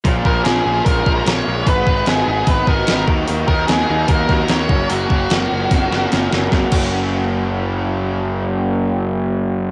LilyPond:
<<
  \new Staff \with { instrumentName = "Lead electric guitar" } { \time 4/4 \key fis \major \tempo 4 = 148 r8 ais'8 gis'4 ais'4 cis''4 | b'4 gis'8 gis'8 b'8 ais'4 r8 | r8 ais'8 gis'4 ais'4 cis''4 | fis'2. r4 |
r1 | r1 | }
  \new Staff \with { instrumentName = "Overdriven electric guitar" } { \time 4/4 \key fis \major <ais, eis ais cis' eis' ais'>8 <ais cis' eis' ais'>8 <ais cis' eis' ais'>8 <ais cis' eis' ais'>4 <ais cis' eis' ais'>8 <ais, eis ais cis' eis' ais'>4 | <gis b dis' b'>8 <b dis' b'>8 <gis b dis' b'>8 <b dis' b'>4 <b dis' b'>8 <gis b dis' b'>8 <dis ais dis' fis' ais'>8 | <dis ais dis' fis' ais'>8 <dis' fis' ais'>8 <ais dis' fis' ais'>8 <dis' fis' ais'>4 <dis' fis' ais'>8 <dis ais dis' fis' ais'>8 <fis ais cis' fis' ais'>8 | <fis ais cis' fis' ais'>8 <cis' fis' ais'>8 <ais cis' fis' ais'>8 <cis' fis' ais'>4 <cis' fis' ais'>8 <fis ais cis' fis' ais'>4 |
<fis ais cis' fis' ais'>8 <fis ais cis' fis' ais'>2.~ <fis ais cis' fis' ais'>8~ | <fis ais cis' fis' ais'>1 | }
  \new Staff \with { instrumentName = "Overdriven electric guitar" } { \clef bass \time 4/4 \key fis \major ais,8 ais,8 eis8 cis'8 gis8 eis8 cis'8 gis8 | gis,8 dis8 fis8 dis'8 b8 fis8 dis'8 dis8 | dis8 dis8 fis8 dis'8 ais8 fis8 dis'8 fis,8 | fis,8 cis8 eis8 cis'8 ais4 cis'8 ais8 |
<fis, cis fis ais cis' fis'>8 <fis, cis fis ais cis' fis'>2.~ <fis, cis fis ais cis' fis'>8~ | <fis, cis fis ais cis' fis'>1 | }
  \new Staff \with { instrumentName = "Picked electric bass" } { \clef bass \time 4/4 \key fis \major ais,,8 ais,,8 ais,,8 ais,,8 ais,,8 ais,,8 ais,,8 ais,,8 | gis,,8 gis,,8 gis,,8 gis,,8 gis,,8 gis,,8 gis,,8 dis,8 | dis,8 dis,8 dis,8 dis,8 dis,8 dis,8 dis,8 fis,,8 | fis,,8 fis,,8 fis,,8 fis,,8 fis,,8 fis,,8 fis,,8 fis,,8 |
fis,,8 fis,,2.~ fis,,8~ | fis,,1 | }
  \new DrumStaff \with { instrumentName = "Drums" } \drummode { \time 4/4 <hho bd>8 bd8 <hho sn>4 <hho bd>8 bd8 <hho sn>4 | <hho bd>8 bd8 <hho sn>4 <hho bd>8 bd8 <hho sn>8 bd8 | hho8 bd8 <hho sn>4 <hho bd>8 <bd sn>8 <hho sn>8 bd8 | hho8 bd8 <hho sn>4 <hho bd sn>8 sn8 <hho sn>8 sn8 |
<bd sn>8 <cymc bd>8 r4 r4 r4 | r4 r4 r4 r4 | }
>>